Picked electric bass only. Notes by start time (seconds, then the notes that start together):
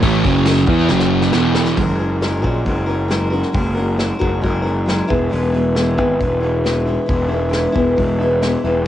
0.03 A1
0.25 F#1
0.67 E2
0.89 F#1
1.33 E1
1.77 F#1
2.44 A#1
2.66 F#1
3.55 F#1
4.22 F#1
4.43 F#1
5.11 E1
5.32 E1
5.98 G#1
6.21 E1
7.09 E1
7.75 E1
7.98 E1
8.64 E1